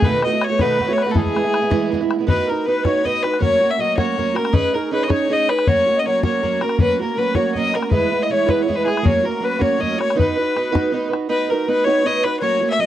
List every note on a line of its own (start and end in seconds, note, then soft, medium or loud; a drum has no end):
0.02 0.24 B2 medium
0.02 0.23 D#3 medium
0.02 0.24 A3 loud
0.02 0.23 B3 medium
0.02 0.24 F#4 medium
0.02 0.24 B4 medium
0.02 0.24 B4 loud
0.02 bodhran medium
0.13 bodhran soft
0.22 0.33 D#3 medium
0.22 0.33 A3 medium
0.22 0.33 B3 medium
0.22 0.32 F#4 medium
0.22 0.41 D#5 medium
0.22 0.46 D#5 medium
0.22 bodhran medium
0.33 0.50 A3 soft
0.33 0.51 B3 soft
0.33 0.48 F#4 medium
0.41 0.60 C#5 medium
0.41 0.62 C#5 loud
0.41 bodhran medium
0.50 0.60 A3 soft
0.50 0.60 B3 soft
0.50 0.59 F#4 soft
0.59 0.80 B2 medium
0.59 0.78 D#3 medium
0.59 0.79 A3 medium
0.59 0.78 B3 medium
0.59 0.79 F#4 medium
0.59 0.89 B4 medium
0.59 0.95 B4 loud
0.59 bodhran medium
0.79 0.88 D#3 medium
0.79 0.89 A3 medium
0.79 0.88 B3 medium
0.79 0.87 F#4 medium
0.79 bodhran soft
0.88 1.06 A3 medium
0.88 1.07 B3 soft
0.88 1.05 F#4 medium
0.88 0.97 C#5 medium
0.93 1.04 C#5 medium
0.98 1.16 B4 medium
0.98 bodhran medium
1.02 1.15 F#4 medium
1.02 1.12 B4 medium
1.07 1.14 A3 soft
1.07 1.13 B3 soft
1.07 1.21 A4 medium
1.14 1.33 E3 medium
1.14 1.34 G#3 medium
1.14 1.35 B3 medium
1.14 1.35 E4 medium
1.14 1.88 G#4 medium
1.14 bodhran medium
1.19 1.94 G#4 medium
1.26 bodhran soft
1.35 1.44 E3 medium
1.35 1.44 G#3 medium
1.35 1.44 B3 medium
1.35 1.43 E4 medium
1.35 bodhran medium
1.44 1.62 G#3 soft
1.44 1.61 B3 soft
1.44 1.60 E4 soft
1.54 bodhran medium
1.62 1.70 G#3 soft
1.62 1.71 B3 medium
1.62 1.70 E4 medium
1.70 1.91 E3 loud
1.70 1.91 G#3 medium
1.70 1.92 B3 medium
1.70 1.92 E4 medium
1.70 bodhran medium
1.92 2.01 E3 medium
1.92 2.01 G#3 medium
1.92 2.00 B3 medium
1.92 1.99 E4 medium
1.92 bodhran soft
2.01 2.20 G#3 soft
2.01 2.19 B3 soft
2.01 2.17 E4 medium
2.11 bodhran medium
2.18 2.27 G#3 soft
2.18 2.25 B3 soft
2.18 2.28 E4 soft
2.27 2.48 B3 medium
2.27 2.48 D#4 medium
2.27 2.48 F#4 medium
2.27 2.48 B4 medium
2.27 2.51 B4 loud
2.27 bodhran medium
2.46 2.67 F#4 soft
2.46 2.66 A#4 medium
2.46 2.67 A#4 medium
2.46 2.67 B4 medium
2.51 2.67 D#4 soft
2.66 2.85 B3 soft
2.66 2.85 D#4 medium
2.66 2.85 F#4 medium
2.66 2.85 B4 medium
2.66 2.84 B4 medium
2.84 3.03 B3 medium
2.84 3.03 D#4 medium
2.84 3.04 F#4 medium
2.84 3.05 B4 medium
2.84 3.06 C#5 medium
2.84 bodhran medium
3.04 3.22 B3 medium
3.04 3.23 D#4 medium
3.04 3.23 F#4 medium
3.04 3.22 B4 medium
3.04 3.23 D#5 medium
3.04 3.24 D#5 loud
3.04 bodhran soft
3.23 3.40 D#4 soft
3.23 3.41 F#4 soft
3.23 3.41 B4 medium
3.23 3.40 B4 loud
3.23 3.41 B4 soft
3.23 bodhran medium
3.34 bodhran soft
3.40 3.61 F#3 medium
3.40 3.61 A#3 medium
3.40 3.61 C#4 medium
3.40 3.59 F#4 medium
3.40 3.71 C#5 medium
3.40 3.72 C#5 loud
3.40 bodhran medium
3.60 3.78 A#3 soft
3.60 3.78 C#4 soft
3.60 3.79 F#4 medium
3.70 3.81 E5 medium
3.70 3.79 E5 medium
3.78 3.97 F#3 medium
3.78 3.97 A#3 medium
3.78 3.97 C#4 medium
3.78 3.96 F#4 medium
3.78 3.98 D#5 medium
3.78 3.96 D#5 loud
3.97 4.16 F#3 medium
3.97 4.17 A#3 medium
3.97 4.18 C#4 medium
3.97 4.18 F#4 medium
3.97 4.37 C#5 loud
3.97 4.37 C#5 medium
3.97 bodhran medium
4.17 4.35 F#3 medium
4.17 4.36 A#3 medium
4.17 4.35 C#4 medium
4.17 4.34 F#4 medium
4.17 bodhran soft
4.35 4.52 A#3 soft
4.35 4.51 C#4 soft
4.35 4.53 F#4 medium
4.35 4.56 A#4 loud
4.35 4.55 A#4 medium
4.35 bodhran medium
4.45 bodhran medium
4.53 4.73 C#4 medium
4.53 4.73 D#4 medium
4.53 4.73 G#4 medium
4.53 4.75 B4 loud
4.53 4.75 B4 medium
4.53 4.72 C#5 medium
4.53 bodhran medium
4.73 4.91 D#4 soft
4.73 4.91 G#4 medium
4.73 4.92 A#4 medium
4.73 4.93 A#4 medium
4.73 4.91 C#5 medium
4.91 5.08 C#4 medium
4.91 5.08 D#4 medium
4.91 5.07 G#4 medium
4.91 5.05 B4 loud
4.91 5.10 B4 medium
4.91 5.06 C#5 medium
5.03 5.12 D#5 medium
5.08 5.28 C#4 medium
5.08 5.29 D#4 medium
5.08 5.29 G#4 medium
5.08 5.29 C#5 medium
5.08 5.35 C#5 loud
5.08 bodhran medium
5.12 5.32 C#5 medium
5.29 5.48 C#4 medium
5.29 5.48 D#4 medium
5.29 5.48 G#4 medium
5.29 5.47 C#5 medium
5.29 5.47 D#5 medium
5.33 5.51 D#5 loud
5.49 5.67 D#4 soft
5.49 5.67 G#4 soft
5.49 5.70 B4 loud
5.49 5.67 B4 medium
5.49 5.66 C#5 medium
5.49 bodhran medium
5.59 bodhran medium
5.67 5.87 F#3 medium
5.67 5.87 A#3 medium
5.67 5.88 C#4 medium
5.67 5.87 F#4 medium
5.67 5.97 C#5 medium
5.67 6.01 C#5 loud
5.67 bodhran medium
5.88 6.05 A#3 soft
5.88 6.06 C#4 soft
5.88 6.05 F#4 medium
5.96 6.05 D#5 medium
5.96 6.07 D#5 medium
6.06 6.23 F#3 medium
6.06 6.23 A#3 medium
6.06 6.22 C#4 medium
6.06 6.22 F#4 medium
6.06 6.23 C#5 loud
6.06 6.22 C#5 medium
6.23 6.42 F#3 medium
6.23 6.42 A#3 medium
6.23 6.43 C#4 medium
6.23 6.43 F#4 medium
6.23 6.63 C#5 medium
6.23 6.59 C#5 medium
6.23 bodhran medium
6.43 6.61 F#3 medium
6.43 6.61 A#3 medium
6.43 6.61 C#4 medium
6.43 6.60 F#4 medium
6.43 bodhran soft
6.61 6.79 A#3 soft
6.61 6.79 C#4 soft
6.61 6.79 F#4 soft
6.61 6.79 A#4 medium
6.61 6.80 A#4 medium
6.61 bodhran medium
6.69 bodhran medium
6.79 7.00 F#3 medium
6.79 7.00 A#3 medium
6.79 6.99 C#4 medium
6.79 6.98 F#4 medium
6.79 7.01 B4 medium
6.79 6.99 B4 loud
6.79 bodhran medium
7.00 7.16 A#3 soft
7.00 7.18 C#4 soft
7.00 7.18 F#4 medium
7.00 7.19 A#4 medium
7.17 7.35 F#3 medium
7.17 7.35 A#3 medium
7.17 7.35 C#4 medium
7.17 7.34 F#4 medium
7.17 7.36 B4 medium
7.17 7.37 B4 medium
7.35 7.55 F#3 medium
7.35 7.55 A#3 medium
7.35 7.56 C#4 medium
7.35 7.56 F#4 medium
7.35 7.54 C#5 medium
7.35 7.57 C#5 medium
7.35 bodhran medium
7.55 7.74 F#3 medium
7.55 7.74 A#3 medium
7.55 7.74 C#4 medium
7.55 7.73 F#4 medium
7.55 7.76 D#5 loud
7.55 bodhran soft
7.59 7.76 D#5 medium
7.74 7.91 A#3 soft
7.74 7.91 C#4 soft
7.74 7.92 F#4 soft
7.74 7.91 A#4 medium
7.74 bodhran soft
7.78 7.95 A#4 medium
7.82 bodhran medium
7.91 8.12 E3 medium
7.91 8.12 G#3 medium
7.91 8.11 B3 medium
7.91 8.11 E4 medium
7.91 8.24 B4 loud
7.91 bodhran medium
7.96 8.21 B4 medium
8.12 8.29 G#3 soft
8.12 8.29 B3 medium
8.12 8.30 E4 medium
8.23 8.32 D#5 medium
8.23 8.31 D#5 medium
8.29 8.46 E3 medium
8.29 8.46 G#3 medium
8.29 8.45 B3 medium
8.29 8.45 E4 medium
8.29 8.51 C#5 loud
8.29 8.50 C#5 medium
8.46 8.66 E3 medium
8.46 8.67 G#3 medium
8.46 8.67 B3 medium
8.46 8.68 E4 medium
8.46 8.63 B4 medium
8.46 bodhran medium
8.52 8.63 B4 medium
8.62 8.77 C#5 medium
8.68 8.86 E3 medium
8.68 8.86 G#3 medium
8.68 8.85 B3 medium
8.68 8.84 E4 medium
8.68 bodhran soft
8.76 8.85 B4 loud
8.76 8.89 B4 medium
8.85 9.03 G#3 soft
8.85 9.03 B3 soft
8.85 9.04 E4 medium
8.85 9.07 G#4 medium
8.85 bodhran medium
8.90 9.05 G#4 medium
8.97 bodhran medium
9.02 9.24 F#3 medium
9.02 9.24 A#3 medium
9.02 9.23 C#4 medium
9.02 9.22 F#4 medium
9.02 9.27 C#5 loud
9.02 bodhran medium
9.08 9.25 C#5 medium
9.23 9.40 A#3 soft
9.23 9.40 C#4 soft
9.23 9.41 F#4 medium
9.23 9.46 A#4 medium
9.29 9.44 A#4 medium
9.40 9.58 F#3 medium
9.40 9.58 A#3 medium
9.40 9.58 C#4 medium
9.40 9.57 F#4 medium
9.40 9.62 B4 medium
9.45 9.63 B4 medium
9.59 9.77 F#3 medium
9.59 9.78 A#3 medium
9.59 9.79 C#4 medium
9.59 9.79 F#4 medium
9.59 9.82 C#5 medium
9.59 bodhran medium
9.63 9.99 C#5 medium
9.78 9.98 F#3 medium
9.78 9.98 A#3 medium
9.78 9.97 C#4 medium
9.78 9.96 F#4 medium
9.78 10.00 D#5 medium
9.83 bodhran soft
9.97 10.15 A#3 soft
9.97 10.16 C#4 soft
9.97 10.15 F#4 soft
9.97 10.17 C#5 loud
9.97 10.17 C#5 medium
9.97 bodhran medium
10.10 bodhran medium
10.15 10.36 B3 medium
10.15 10.37 D#4 medium
10.15 10.37 F#4 medium
10.15 10.36 B4 medium
10.15 11.09 B4 loud
10.19 11.09 B4 medium
10.19 bodhran medium
10.37 10.55 D#4 soft
10.37 10.56 F#4 soft
10.37 10.55 B4 medium
10.56 10.72 B3 medium
10.56 10.71 D#4 medium
10.56 10.71 F#4 medium
10.56 10.71 B4 medium
10.56 bodhran medium
10.72 10.91 B3 medium
10.72 10.92 D#4 medium
10.72 10.92 F#4 medium
10.72 10.93 B4 medium
10.72 bodhran medium
10.92 11.11 B3 medium
10.92 11.12 D#4 medium
10.92 11.10 F#4 medium
10.92 11.09 B4 medium
11.10 11.28 D#4 soft
11.10 11.28 F#4 soft
11.10 11.29 B4 medium
11.10 bodhran medium
11.29 11.50 B3 medium
11.29 11.50 D#4 medium
11.29 11.50 F#4 medium
11.29 11.52 B4 loud
11.29 11.49 B4 medium
11.49 11.67 D#4 soft
11.49 11.68 F#4 soft
11.49 11.66 A#4 medium
11.49 11.70 A#4 medium
11.49 11.68 B4 medium
11.67 11.86 B3 medium
11.67 11.86 D#4 medium
11.67 11.85 F#4 medium
11.67 11.84 B4 medium
11.67 11.86 B4 loud
11.67 11.85 B4 medium
11.84 12.04 B3 medium
11.84 12.04 D#4 medium
11.84 12.05 F#4 medium
11.84 12.05 B4 medium
11.84 12.08 C#5 loud
11.84 12.25 C#5 medium
12.05 12.24 B3 medium
12.05 12.24 D#4 medium
12.05 12.24 F#4 medium
12.05 12.23 B4 medium
12.05 12.25 D#5 loud
12.24 12.41 D#4 soft
12.24 12.42 F#4 soft
12.24 12.42 B4 soft
12.24 12.39 B4 loud
12.24 12.41 B4 medium
12.40 12.62 F#3 medium
12.40 12.61 A#3 medium
12.40 12.61 C#4 medium
12.40 12.59 F#4 medium
12.40 12.68 C#5 loud
12.40 12.69 C#5 medium
12.60 12.78 A#3 soft
12.60 12.79 C#4 soft
12.60 12.79 F#4 medium
12.70 12.82 E5 medium
12.70 12.80 E5 medium
12.79 12.86 F#3 medium
12.79 12.86 A#3 medium
12.79 12.86 C#4 medium
12.79 12.86 F#4 medium
12.79 12.86 D#5 loud